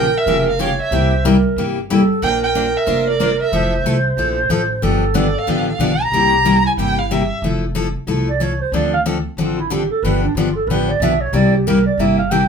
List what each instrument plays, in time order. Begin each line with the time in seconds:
Already playing: upright bass A#1, clarinet A#4, violin G5
0.17 violin E5
0.26 upright bass F1, steel-string acoustic guitar C#3 F3 A#3 F4 G4
0.50 violin F5
0.59 steel-string acoustic guitar C#3 F3 A#3 F4 G4, clarinet C#5
0.82 violin E5
0.91 upright bass C2, steel-string acoustic guitar C3 G3 A#3 E4 G4, clarinet C5
1.25 steel-string acoustic guitar C3 G3 A#3 E4 G4, clarinet A#4
1.56 upright bass G1, steel-string acoustic guitar C3 G3 A#3 E4 G4
1.89 steel-string acoustic guitar C3 G3 A#3 E4 G4, clarinet A4
2.22 upright bass A#1, steel-string acoustic guitar A#3 D4 F4 C5, clarinet A#4, violin G5
2.43 violin G5
2.55 steel-string acoustic guitar A#3 D4 F4 C5
2.77 violin E5
2.87 upright bass F1, steel-string acoustic guitar A#3 D4 F4 C5
3.10 violin D5
3.20 steel-string acoustic guitar A#3 D4 F4 C5
3.42 violin E5
3.52 upright bass F1, steel-string acoustic guitar F3 A3 E4 A4, clarinet C5
3.84 upright bass C2, steel-string acoustic guitar F3 A3 E4 A4
4.17 upright bass A#1, steel-string acoustic guitar F3 A3 E4 A4
4.49 upright bass A1, steel-string acoustic guitar F3 A3 E4 A4
4.82 upright bass G1, steel-string acoustic guitar D3 F3 B3 D4 G4, clarinet A4
5.14 steel-string acoustic guitar D3 F3 B3 D4 G4
5.19 violin D5
5.38 violin F5
5.47 upright bass A1, steel-string acoustic guitar D3 F3 B3 D4 G4
5.70 violin F5
5.79 upright bass B1, steel-string acoustic guitar D3 F3 B3 D4 G4
6.02 violin A#5
6.12 upright bass C2, steel-string acoustic guitar C3 G3 A#3 E4 G4, clarinet G4
6.45 steel-string acoustic guitar C3 G3 A#3 E4 G4, clarinet E4
6.66 violin G#5
6.77 upright bass G1, steel-string acoustic guitar C3 G3 A#3 E4 G4, violin G5
6.98 violin F5
7.11 steel-string acoustic guitar C3 G3 A#3 E4 G4, violin E5
7.42 upright bass F1, steel-string acoustic guitar F3 A3 E4 A4
7.75 steel-string acoustic guitar F3 A3 E4 A4
8.07 upright bass C2, steel-string acoustic guitar F3 A3 E4 A4
8.29 clarinet D5
8.40 steel-string acoustic guitar F3 A3 E4 A4, clarinet C#5
8.60 clarinet C5
8.72 upright bass D2, steel-string acoustic guitar D3 F3 C4 D4 A4, clarinet D5
8.94 clarinet F5
9.06 steel-string acoustic guitar D3 F3 C4 D4 A4
9.37 upright bass A1, steel-string acoustic guitar D3 F3 C4 D4 A4, clarinet F4
9.59 clarinet E4
9.70 steel-string acoustic guitar D3 F3 C4 D4 A4, clarinet G4
9.90 clarinet A4
10.03 upright bass G1, steel-string acoustic guitar D3 F3 B3 D4 G4, clarinet B4
10.23 clarinet D4
10.35 upright bass G1, steel-string acoustic guitar D3 F3 B3 D4 G4, clarinet F4
10.55 clarinet A4
10.67 upright bass A1, steel-string acoustic guitar D3 F3 B3 D4, clarinet B4
10.71 steel-string acoustic guitar G4
10.89 clarinet D5
11.00 upright bass B1, steel-string acoustic guitar D3 F3 B3 D4 G4, clarinet E5
11.20 clarinet C#5
11.33 upright bass C2, steel-string acoustic guitar C3 G3 A#3 E4 G4, clarinet D5
11.54 clarinet G4
11.67 steel-string acoustic guitar C3 G3 A#3 E4 G4, clarinet A#4
11.86 clarinet D5
11.98 upright bass G1, steel-string acoustic guitar C3 G3 A#3 E4 G4, clarinet E5
12.18 clarinet F5
12.31 steel-string acoustic guitar C3 G3 A#3 E4 G4, clarinet G5